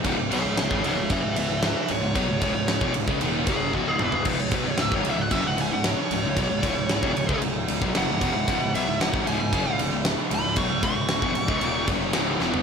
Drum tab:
CC |----------------|----------------|x---------------|----------------|
RD |x-x-x-x-x-x-x-x-|x-x-x-x-x-x-----|--x-x-x-x-x-x-x-|x-x-x-x-x-x-x-x-|
SD |----o-------o---|----o-----------|----o-------o---|----o-------o---|
T2 |----------------|--------------o-|----------------|----------------|
FT |----------------|---------------o|----------------|----------------|
BD |o----o--o-------|o-o--o-o--o-o---|o-o--o--o-------|o-o--o-o---o--o-|

CC |----------------|----------------|
RD |x-x-x-x-x-x-x-x-|x-x-x-x-x-x-x---|
SD |----o-------o---|----o-------o-o-|
T2 |----------------|----------------|
FT |----------------|---------------o|
BD |o----o--o-------|o-o--o-o--o-----|